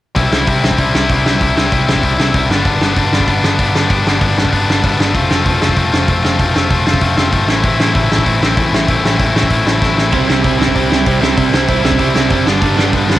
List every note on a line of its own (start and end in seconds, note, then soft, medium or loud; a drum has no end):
0.15 0.29 C2 medium
0.15 0.33 C3 medium
0.15 0.32 G3 medium
0.15 0.32 C4 medium
0.15 0.31 E4 medium
0.15 kick loud
0.15 open hi-hat medium
0.31 0.45 C2 medium
0.31 0.46 C3 medium
0.31 0.47 G3 medium
0.31 0.48 C4 medium
0.31 0.48 E4 medium
0.31 snare loud
0.47 0.61 C2 medium
0.47 0.63 C3 medium
0.47 0.63 G3 medium
0.47 0.62 C4 medium
0.47 0.61 E4 medium
0.47 kick loud
0.47 open hi-hat medium
0.62 0.77 C2 medium
0.62 0.76 C3 medium
0.62 0.77 G3 medium
0.62 0.77 C4 medium
0.62 0.78 E4 medium
0.62 snare loud
0.71 kick medium
0.77 0.92 C2 medium
0.77 0.94 C3 medium
0.77 0.95 G3 loud
0.77 0.94 C4 medium
0.77 0.92 E4 medium
0.77 kick medium
0.77 open hi-hat medium
0.94 1.07 C2 medium
0.94 1.09 C3 medium
0.94 1.11 G3 medium
0.94 1.10 C4 medium
0.94 1.11 E4 medium
0.94 snare loud
1.09 1.23 C2 medium
1.09 1.26 C3 medium
1.09 1.26 G3 medium
1.09 1.25 C4 medium
1.09 1.24 E4 medium
1.09 kick loud
1.09 open hi-hat medium
1.25 1.39 C2 medium
1.25 1.39 C3 medium
1.25 1.41 G3 medium
1.25 1.41 C4 medium
1.25 1.41 E4 medium
1.25 snare loud
1.41 1.54 C2 medium
1.41 1.56 C3 medium
1.41 1.57 G3 medium
1.41 1.55 C4 medium
1.41 1.55 E4 medium
1.41 kick loud
1.41 open hi-hat medium
1.56 1.70 C2 medium
1.56 1.70 C3 medium
1.56 1.72 G3 medium
1.56 1.72 C4 medium
1.56 1.72 E4 medium
1.56 snare loud
1.71 1.85 C2 medium
1.71 1.88 C3 medium
1.71 1.88 G3 medium
1.71 1.87 C4 medium
1.71 1.86 E4 loud
1.71 kick loud
1.71 open hi-hat medium
1.87 2.01 C2 medium
1.87 2.02 C3 medium
1.87 2.03 G3 medium
1.87 2.03 C4 medium
1.87 2.04 E4 medium
1.87 snare loud
1.96 kick medium
2.03 2.17 C2 medium
2.03 2.18 C3 medium
2.03 2.19 G3 loud
2.03 2.17 C4 medium
2.03 2.16 E4 loud
2.03 kick medium
2.03 open hi-hat soft
2.18 2.32 C2 medium
2.18 2.32 C3 medium
2.18 2.34 G3 medium
2.18 2.34 C4 medium
2.18 2.34 E4 medium
2.18 snare loud
2.33 2.47 C2 medium
2.33 2.48 C3 medium
2.33 2.50 G3 loud
2.33 2.49 C4 loud
2.33 2.49 E4 loud
2.33 kick loud
2.33 open hi-hat medium
2.49 2.63 G1 medium
2.49 2.67 G2 loud
2.49 2.66 D3 medium
2.49 2.66 G3 medium
2.49 2.65 B3 loud
2.49 2.64 D4 loud
2.49 snare loud
2.65 2.79 G1 medium
2.65 2.81 G2 medium
2.65 2.81 D3 medium
2.65 2.82 G3 medium
2.65 2.82 B3 medium
2.65 2.83 D4 loud
2.65 kick loud
2.65 open hi-hat soft
2.81 2.94 G1 medium
2.81 2.99 G2 medium
2.81 2.98 D3 medium
2.81 2.98 G3 medium
2.81 2.97 B3 loud
2.81 2.97 D4 medium
2.81 snare loud
2.96 3.10 G1 medium
2.96 3.12 G2 medium
2.96 3.12 D3 medium
2.96 3.13 G3 medium
2.96 3.14 B3 medium
2.96 3.14 D4 loud
2.96 kick loud
2.96 open hi-hat medium
3.12 3.25 G1 medium
3.12 3.28 G2 medium
3.12 3.28 D3 medium
3.12 3.27 G3 medium
3.12 3.26 B3 medium
3.12 3.26 D4 medium
3.12 snare loud
3.20 kick medium
3.27 3.41 G1 medium
3.27 3.42 G2 medium
3.27 3.42 D3 medium
3.27 3.43 G3 medium
3.27 3.44 B3 loud
3.27 3.44 D4 loud
3.27 kick medium
3.27 open hi-hat medium
3.43 3.57 G1 medium
3.43 3.60 G2 medium
3.43 3.60 D3 medium
3.43 3.59 G3 medium
3.43 3.59 B3 medium
3.43 3.58 D4 medium
3.43 snare loud
3.59 3.72 G1 medium
3.59 3.74 G2 medium
3.59 3.74 D3 medium
3.59 3.75 G3 loud
3.59 3.75 B3 loud
3.59 3.76 D4 loud
3.59 kick loud
3.59 open hi-hat medium
3.75 3.88 G1 medium
3.75 3.91 G2 medium
3.75 3.90 D3 medium
3.75 3.90 G3 medium
3.75 3.89 B3 medium
3.75 3.89 D4 medium
3.75 snare loud
3.90 4.03 G1 medium
3.90 4.04 G2 medium
3.90 4.05 D3 medium
3.90 4.06 G3 medium
3.90 4.06 B3 medium
3.90 4.07 D4 medium
3.90 kick loud
3.90 open hi-hat medium
4.06 4.19 G1 medium
4.06 4.23 G2 medium
4.06 4.22 D3 medium
4.06 4.21 G3 medium
4.06 4.21 B3 medium
4.06 4.20 D4 medium
4.06 snare loud
4.21 4.35 G1 medium
4.21 4.36 G2 medium
4.21 4.36 D3 medium
4.21 4.37 G3 medium
4.21 4.38 B3 medium
4.21 4.38 D4 medium
4.21 kick loud
4.21 open hi-hat medium
4.37 4.51 G1 medium
4.37 4.53 G2 medium
4.37 4.53 D3 medium
4.37 4.52 G3 medium
4.37 4.52 B3 medium
4.37 4.51 D4 medium
4.37 snare loud
4.45 kick medium
4.52 4.66 G1 medium
4.52 4.66 G2 medium
4.52 4.67 D3 medium
4.52 4.68 G3 medium
4.52 4.68 B3 loud
4.52 4.69 D4 loud
4.52 kick medium
4.52 open hi-hat medium
4.68 4.81 G1 medium
4.68 4.84 G2 medium
4.68 4.84 D3 medium
4.68 4.83 G3 medium
4.68 4.82 B3 medium
4.68 4.82 D4 medium
4.68 snare loud
4.83 4.97 G1 medium
4.83 4.97 G2 medium
4.83 4.98 D3 medium
4.83 4.99 G3 medium
4.83 4.99 B3 medium
4.83 5.00 D4 loud
4.83 kick loud
4.83 open hi-hat medium
4.98 5.12 G1 medium
4.98 5.13 G2 medium
4.98 5.14 D3 medium
4.98 5.14 G3 medium
4.98 5.14 B3 medium
4.98 5.15 D4 medium
4.98 snare loud
5.14 5.28 F1 medium
5.14 5.31 F3 medium
5.14 5.31 A3 medium
5.14 5.30 C4 medium
5.14 5.29 F4 loud
5.14 kick loud
5.14 open hi-hat soft
5.30 5.44 F1 medium
5.30 5.45 F3 medium
5.30 5.46 A3 medium
5.30 5.46 C4 medium
5.30 5.47 F4 medium
5.30 snare loud
5.45 5.59 F1 medium
5.45 5.62 F3 medium
5.45 5.62 A3 medium
5.45 5.61 C4 loud
5.45 5.60 F4 medium
5.45 kick loud
5.45 open hi-hat medium
5.61 5.75 F1 medium
5.61 5.76 F3 medium
5.61 5.77 A3 medium
5.61 5.78 C4 medium
5.61 5.77 F4 medium
5.61 snare loud
5.69 kick medium
5.76 5.90 F1 medium
5.76 5.93 F3 medium
5.76 5.93 A3 medium
5.76 5.93 C4 medium
5.76 5.91 F4 medium
5.76 kick medium
5.76 open hi-hat medium
5.92 6.06 F1 medium
5.92 6.07 F3 medium
5.92 6.09 A3 medium
5.92 6.09 C4 medium
5.92 6.09 F4 medium
5.92 snare loud
6.08 6.21 F1 medium
6.08 6.24 F3 medium
6.08 6.24 A3 medium
6.08 6.23 C4 loud
6.08 6.22 F4 medium
6.08 kick loud
6.08 open hi-hat medium
6.23 6.37 F1 medium
6.23 6.38 F3 medium
6.23 6.39 A3 medium
6.23 6.40 C4 medium
6.23 6.39 F4 medium
6.23 snare loud
6.39 6.53 F1 medium
6.39 6.55 F3 medium
6.39 6.55 A3 medium
6.39 6.55 C4 medium
6.39 6.53 F4 medium
6.39 kick loud
6.39 open hi-hat medium
6.54 6.68 F1 medium
6.54 6.69 F3 medium
6.54 6.70 A3 medium
6.54 6.71 C4 medium
6.54 6.70 F4 medium
6.54 snare loud
6.70 6.84 F1 medium
6.70 6.86 F3 medium
6.70 6.86 A3 medium
6.70 6.86 C4 loud
6.70 6.84 F4 medium
6.70 kick loud
6.70 open hi-hat medium
6.85 7.00 F1 medium
6.85 7.00 F3 medium
6.85 7.02 A3 medium
6.85 7.02 C4 medium
6.85 7.02 F4 medium
6.85 snare loud
6.94 kick medium
7.01 7.15 F1 medium
7.01 7.17 F3 medium
7.01 7.18 A3 medium
7.01 7.17 C4 loud
7.01 7.16 F4 loud
7.01 kick medium
7.01 open hi-hat medium
7.17 7.30 F1 medium
7.17 7.31 F3 medium
7.17 7.32 A3 medium
7.17 7.32 C4 medium
7.17 7.33 F4 medium
7.17 snare loud
7.32 7.46 G1 medium
7.32 7.47 F3 medium
7.32 7.48 A3 loud
7.32 7.49 C4 loud
7.32 7.48 F4 loud
7.32 kick loud
7.32 open hi-hat medium
7.47 7.62 A1 medium
7.47 7.65 A2 medium
7.47 7.64 E3 medium
7.47 7.64 A3 loud
7.47 7.63 C4 loud
7.47 7.62 E4 loud
7.47 snare loud
7.63 7.77 A1 medium
7.63 7.79 A2 medium
7.63 7.80 E3 medium
7.63 7.80 A3 medium
7.63 7.81 C4 medium
7.63 7.81 E4 medium
7.63 kick loud
7.63 open hi-hat soft
7.79 7.93 A1 medium
7.79 7.96 A2 medium
7.79 7.96 E3 medium
7.79 7.95 A3 medium
7.79 7.94 C4 medium
7.79 7.94 E4 medium
7.79 snare loud
7.94 8.09 A1 medium
7.94 8.09 A2 medium
7.94 8.10 E3 medium
7.94 8.10 A3 medium
7.94 8.11 C4 loud
7.94 8.11 E4 loud
7.94 kick loud
7.94 open hi-hat soft
8.09 8.24 A1 medium
8.09 8.26 A2 medium
8.09 8.26 E3 medium
8.09 8.25 A3 medium
8.09 8.25 C4 medium
8.09 8.24 E4 medium
8.09 snare loud
8.19 kick medium
8.24 8.40 A1 medium
8.24 8.39 A2 medium
8.24 8.41 E3 medium
8.24 8.41 A3 medium
8.24 8.42 C4 loud
8.24 8.42 E4 loud
8.24 kick medium
8.24 open hi-hat soft
8.40 8.55 A1 medium
8.40 8.58 A2 medium
8.40 8.58 E3 medium
8.40 8.57 A3 medium
8.40 8.57 C4 medium
8.40 8.56 E4 medium
8.40 snare loud
8.57 8.70 A1 medium
8.57 8.71 A2 medium
8.57 8.72 E3 medium
8.57 8.72 A3 medium
8.57 8.73 C4 medium
8.57 8.74 E4 loud
8.57 kick loud
8.57 open hi-hat medium
8.72 8.86 A1 medium
8.72 8.89 A2 medium
8.72 8.89 E3 medium
8.72 8.88 A3 medium
8.72 8.88 C4 medium
8.72 8.87 E4 medium
8.72 snare loud
8.88 9.02 A1 medium
8.88 9.02 A2 medium
8.88 9.04 E3 medium
8.88 9.03 A3 medium
8.88 9.05 C4 medium
8.88 9.05 E4 medium
8.88 kick loud
8.88 open hi-hat medium
9.03 9.17 A1 medium
9.03 9.20 A2 medium
9.03 9.20 E3 medium
9.03 9.19 A3 medium
9.03 9.19 C4 medium
9.03 9.18 E4 medium
9.03 snare loud
9.19 9.33 A1 medium
9.19 9.32 A2 medium
9.19 9.34 E3 medium
9.19 9.34 A3 medium
9.19 9.35 C4 medium
9.19 9.35 E4 loud
9.19 kick loud
9.19 open hi-hat medium
9.33 9.48 A1 medium
9.33 9.50 A2 medium
9.33 9.50 E3 medium
9.33 9.49 A3 medium
9.33 9.49 C4 medium
9.33 9.49 E4 medium
9.33 snare loud
9.43 kick medium
9.49 9.64 A1 medium
9.49 9.63 A2 medium
9.49 9.65 E3 medium
9.49 9.65 A3 medium
9.49 9.66 C4 medium
9.49 9.67 E4 loud
9.49 kick medium
9.49 open hi-hat medium
9.65 9.79 A1 medium
9.65 9.81 A2 medium
9.65 9.81 E3 medium
9.65 9.80 A3 medium
9.65 9.80 C4 medium
9.65 9.79 E4 medium
9.65 snare loud
9.80 9.95 A1 medium
9.80 9.95 A2 medium
9.80 9.96 E3 medium
9.80 9.96 A3 medium
9.80 9.98 C4 medium
9.80 9.98 E4 loud
9.80 kick loud
9.80 snare medium
9.96 10.13 A1 medium
9.96 10.11 A2 medium
9.96 10.11 E3 medium
9.96 10.12 A3 medium
9.96 10.12 C4 medium
9.96 10.13 E4 medium
9.96 snare medium
10.12 10.26 C2 medium
10.12 10.29 C3 medium
10.12 10.28 G3 medium
10.12 10.27 C4 medium
10.12 10.26 E4 medium
10.12 kick loud
10.12 open hi-hat medium
10.27 10.42 C2 medium
10.27 10.41 C3 medium
10.27 10.42 G3 medium
10.27 10.43 C4 medium
10.27 10.43 E4 medium
10.27 snare loud
10.42 10.58 C2 medium
10.42 10.59 C3 medium
10.42 10.59 G3 medium
10.42 10.58 C4 medium
10.42 10.57 E4 loud
10.42 kick loud
10.42 open hi-hat medium
10.58 10.73 C2 medium
10.58 10.73 C3 medium
10.58 10.75 G3 medium
10.58 10.74 C4 medium
10.58 10.75 E4 medium
10.58 snare loud
10.68 kick medium
10.74 10.89 C2 medium
10.74 10.90 C3 medium
10.74 10.90 G3 medium
10.74 10.89 C4 loud
10.74 10.88 E4 medium
10.74 kick medium
10.74 open hi-hat medium
10.89 11.04 C2 medium
10.89 11.04 C3 medium
10.89 11.05 G3 medium
10.89 11.05 C4 medium
10.89 11.06 E4 medium
10.89 snare loud
11.05 11.20 C2 medium
11.05 11.21 C3 loud
11.05 11.22 G3 loud
11.05 11.21 C4 medium
11.05 11.20 E4 loud
11.05 kick loud
11.05 open hi-hat medium
11.21 11.35 C2 medium
11.21 11.35 C3 medium
11.21 11.37 G3 medium
11.21 11.37 C4 medium
11.21 11.37 E4 medium
11.21 snare loud
11.37 11.51 C2 medium
11.37 11.53 C3 medium
11.37 11.53 G3 medium
11.37 11.51 C4 medium
11.37 11.51 E4 loud
11.37 kick loud
11.37 open hi-hat medium
11.52 11.66 C2 medium
11.52 11.66 C3 medium
11.52 11.68 G3 medium
11.52 11.68 C4 medium
11.52 11.68 E4 medium
11.52 snare loud
11.67 11.82 C2 medium
11.67 11.83 C3 medium
11.67 11.84 G3 medium
11.67 11.82 C4 medium
11.67 11.81 E4 loud
11.67 kick loud
11.67 open hi-hat medium
11.82 11.98 C2 medium
11.82 11.97 C3 medium
11.82 11.99 G3 medium
11.82 11.99 C4 medium
11.82 11.99 E4 loud
11.82 snare loud
11.92 kick medium
11.98 12.13 C2 medium
11.98 12.15 C3 medium
11.98 12.15 G3 medium
11.98 12.14 C4 loud
11.98 12.13 E4 loud
11.98 kick medium
11.98 open hi-hat medium
12.14 12.28 C2 medium
12.14 12.29 C3 medium
12.14 12.31 G3 medium
12.14 12.31 C4 medium
12.14 12.31 E4 medium
12.14 snare loud
12.30 12.44 F#1 medium
12.30 12.45 C3 medium
12.30 12.47 G3 loud
12.30 12.46 C4 loud
12.30 12.46 E4 loud
12.30 kick loud
12.30 open hi-hat medium
12.45 12.59 G1 medium
12.45 12.63 G2 medium
12.45 12.61 D3 loud
12.45 12.61 G3 medium
12.45 12.61 B3 loud
12.45 12.60 D4 loud
12.45 snare loud
12.61 12.75 G1 medium
12.61 12.76 G2 medium
12.61 12.76 D3 medium
12.61 12.77 G3 medium
12.61 12.78 B3 loud
12.61 12.78 D4 medium
12.61 kick loud
12.61 open hi-hat medium
12.76 12.91 G1 medium
12.76 12.94 G2 medium
12.76 12.92 D3 medium
12.76 12.93 G3 medium
12.76 12.92 B3 medium
12.76 12.91 D4 medium
12.76 snare loud
12.92 13.07 G1 medium
12.92 13.07 G2 medium
12.92 13.07 D3 medium
12.92 13.09 G3 medium
12.92 13.09 B3 medium
12.92 13.10 D4 medium
12.92 kick loud
12.92 open hi-hat medium
13.08 13.19 G1 medium
13.08 13.19 G2 medium
13.08 13.19 D3 medium
13.08 13.19 G3 medium
13.08 13.19 B3 medium
13.08 13.19 D4 loud
13.08 snare loud